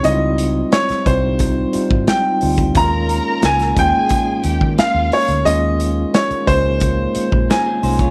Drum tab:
HH |x-x-xxx-x-x-x-ox|x-x-xxx-x-x-x-ox|x-x-xxx-x-x-x-ox|
SD |----oo------o---|----oo------o---|----o-------o---|
BD |------o-o--o---o|o-----o-o--o----|------o-o--o---o|